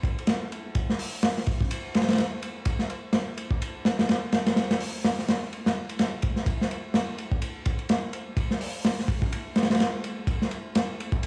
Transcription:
0.03 kick medium
0.03 ride medium
0.18 ride soft
0.27 snare loud
0.27 ride medium
0.52 ride medium
0.75 kick medium
0.75 ride medium
0.90 snare soft
0.99 open hi-hat medium
1.23 snare loud
1.23 ride medium
1.37 snare soft
1.46 kick medium
1.46 ride medium
1.61 kick medium
1.71 ride medium
1.94 snare medium
1.94 ride medium
2.02 snare medium
2.02 ride medium
2.08 snare medium
2.08 ride medium
2.13 snare medium
2.13 ride medium
2.18 snare loud
2.18 ride medium
2.42 ride medium
2.65 kick medium
2.65 ride medium
2.79 snare soft
2.90 ride medium
3.13 snare loud
3.13 ride medium
3.37 ride medium
3.51 kick medium
3.62 ride medium
3.85 snare loud
3.85 ride medium
3.99 snare loud
3.99 ride medium
4.09 snare loud
4.09 ride medium
4.32 snare loud
4.32 ride medium
4.46 snare loud
4.46 ride medium
4.56 snare loud
4.56 ride medium
4.71 snare loud
4.71 ride medium
4.80 open hi-hat medium
5.04 snare loud
5.04 ride medium
5.19 snare soft
5.28 snare loud
5.28 ride medium
5.53 ride medium
5.66 snare medium
5.66 ride medium
5.89 ride medium
5.99 snare medium
5.99 ride medium
6.22 kick loud
6.22 ride medium
6.36 snare soft
6.46 kick loud
6.46 ride medium
6.61 snare medium
6.71 ride medium
6.94 snare loud
6.94 ride medium
7.18 ride medium
7.32 kick medium
7.42 ride medium
7.65 kick loud
7.65 ride medium
7.79 ride soft
7.89 snare loud
7.89 ride medium
8.13 ride medium
8.37 kick loud
8.37 ride medium
8.51 snare soft
8.61 open hi-hat medium
8.85 snare loud
8.85 ride medium
8.99 snare soft
9.08 kick medium
9.08 ride medium
9.22 kick medium
9.32 ride medium
9.56 snare medium
9.56 ride medium
9.63 snare medium
9.63 ride medium
9.70 snare loud
9.70 ride medium
9.75 snare medium
9.75 ride medium
9.80 snare loud
9.80 ride medium
10.04 ride medium
10.27 kick loud
10.27 ride medium
10.42 snare medium
10.51 ride medium
10.75 snare loud
10.75 ride medium
11.00 ride medium
11.12 kick loud
11.23 ride medium

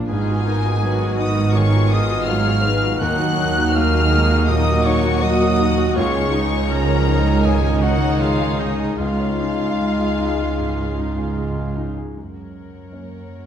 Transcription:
0.00 0.12 F3 medium
0.00 0.12 A#3 medium
0.00 0.12 D4 medium
0.00 0.12 F4 medium
0.07 2.98 G#1 medium
0.07 2.97 G#2 loud
0.07 1.53 G#2 medium
0.07 2.96 B3 loud
0.07 5.78 D#4 medium
0.07 0.78 D#4 medium
0.07 0.79 F4 medium
0.07 0.43 G#4 medium
0.07 1.20 G#4 loud
0.07 0.78 B4 medium
0.07 1.16 G#5 loud
0.07 1.22 G#5 loud
0.29 0.57 F#4 medium
0.46 0.75 D#4 medium
0.46 0.83 A#4 loud
0.65 0.94 F#4 medium
0.81 2.29 D#3 loud
0.81 1.12 F#3 medium
0.81 1.55 F#4 medium
0.81 1.18 B4 loud
1.02 1.31 F#4 medium
1.19 1.49 D#4 medium
1.19 1.55 B4 medium
1.19 1.57 D#5 loud
1.19 1.56 D#6 loud
1.19 1.60 D#6 loud
1.38 1.67 F#4 medium
1.55 1.86 D#3 medium
1.55 3.02 F4 loud
1.55 2.27 G#4 loud
1.55 1.93 C#5 loud
1.55 1.93 C#6 loud
1.55 1.95 C#6 loud
1.75 2.04 F#4 medium
1.92 2.22 D#4 medium
1.92 2.29 D#5 loud
1.92 2.29 D#6 loud
2.10 2.40 F#4 medium
2.28 2.58 F#3 medium
2.28 3.01 G#3 medium
2.28 3.01 G#4 medium
2.28 2.65 C#5 loud
2.28 3.01 F5 loud
2.28 3.01 F6 loud
2.28 3.00 F6 loud
2.47 2.76 F#4 medium
2.64 2.94 D#4 medium
2.64 3.01 B4 loud
2.84 3.02 F#4 medium
2.99 5.96 D#2 loud
2.99 4.45 D#2 loud
2.99 3.74 F#3 loud
2.99 5.78 A#3 loud
2.99 3.35 D#4 loud
2.99 3.75 A#4 medium
2.99 3.74 F#5 loud
2.99 3.77 F#6 loud
2.99 3.74 F#6 loud
3.20 3.50 F#4 medium
3.36 5.18 D#4 medium
3.36 3.69 D#4 medium
3.58 3.87 F#4 medium
3.73 4.05 F#3 medium
3.73 4.12 A#3 loud
3.73 4.49 G#4 loud
3.73 4.47 D#5 loud
3.73 4.50 F5 loud
3.73 4.48 F6 loud
3.73 4.52 F6 loud
3.94 4.23 F#4 medium
4.12 4.49 G#3 loud
4.12 4.42 D#4 medium
4.31 4.60 F#4 medium
4.48 4.78 A#2 medium
4.48 5.20 F#3 loud
4.48 5.96 F#4 loud
4.48 5.21 D#5 loud
4.48 4.88 D#5 loud
4.48 4.84 D#6 loud
4.48 4.87 D#6 loud
4.67 4.96 F#4 medium
4.85 5.15 D#4 medium
4.85 5.24 C#5 loud
4.85 5.22 C#6 loud
4.85 5.24 C#6 loud
5.04 5.34 F#4 medium
5.21 5.94 F#3 loud
5.21 5.52 F#3 medium
5.21 5.57 F#4 loud
5.21 5.96 A#4 loud
5.21 5.96 D#5 loud
5.21 5.96 D#6 loud
5.21 5.95 D#6 loud
5.41 5.70 F#4 loud
5.59 5.89 D#4 medium
5.59 5.95 F#4 loud
5.78 5.96 F#4 medium
5.95 8.97 C#2 loud
5.95 8.96 C#2 loud
5.95 7.41 C#2 loud
5.95 6.70 G#3 loud
5.95 8.94 G#3 loud
5.95 8.94 D#4 loud
5.95 6.33 F4 loud
5.95 6.69 F4 loud
5.95 6.44 C#5 loud
5.95 7.42 C#5 loud
5.95 6.43 C#6 loud
5.95 6.69 C#6 loud
6.15 6.44 G#4 medium
6.32 6.69 D#4 loud
6.32 6.63 D#4 medium
6.52 6.81 G#4 medium
6.68 7.42 F3 medium
6.68 6.99 G#3 medium
6.68 7.06 C#4 loud
6.68 8.20 A#4 loud
6.68 7.47 A#4 loud
6.68 7.45 A#5 loud
6.68 7.47 A#5 loud
6.89 7.18 G#4 medium
7.06 7.42 D#4 loud
7.06 7.37 D#4 medium
7.26 7.56 G#4 medium
7.43 7.75 G#2 medium
7.43 8.95 D#3 loud
7.43 8.98 D#4 loud
7.43 7.83 G#4 loud
7.43 8.95 C#5 loud
7.43 7.82 G#5 loud
7.43 7.84 G#5 loud
7.64 7.94 G#4 medium
7.81 8.13 D#4 medium
7.81 8.22 F#4 loud
7.81 8.21 F#5 loud
7.81 8.23 F#5 loud
8.01 8.32 G#4 medium
8.20 8.51 G#3 medium
8.20 8.61 F4 loud
8.20 8.97 G#4 medium
8.20 8.62 F5 loud
8.20 8.60 F5 loud
8.40 8.71 G#4 medium
8.59 8.97 D#4 medium
8.59 8.91 D#4 medium
8.59 8.99 D#5 loud
8.59 8.98 D#5 medium
8.79 9.11 G#4 medium
8.97 11.90 C#2 medium
8.97 11.91 C#2 medium
8.97 10.55 C#2 medium
8.97 11.78 G#3 medium
8.97 11.95 G#3 medium
8.97 11.78 D#4 loud
8.97 11.72 F4 loud
8.97 11.91 F4 medium
8.97 11.90 G#4 medium
8.97 11.94 F5 medium
8.97 11.76 F5 loud
8.97 11.72 F5 loud
9.20 9.51 C#5 medium
9.40 9.71 D#4 medium
9.59 9.91 G#4 medium
9.79 10.11 G#3 medium
9.99 10.31 G#4 medium
10.19 10.51 D#4 medium
10.39 10.70 G#4 medium
10.58 10.90 G#2 medium
10.78 11.09 G#4 medium
10.98 11.29 D#4 medium
11.18 11.49 G#4 medium
11.37 11.69 G#3 medium
11.57 11.89 G#4 medium
11.77 12.08 D#4 medium
11.97 12.16 G#4 medium
12.15 13.46 F#2 soft
12.15 12.90 F#2 soft
12.15 13.46 A#4 soft
12.15 13.46 C#5 soft
12.15 13.46 F#5 soft
12.92 13.46 A#3 soft
12.92 13.46 C#4 soft
12.92 13.46 C#5 soft

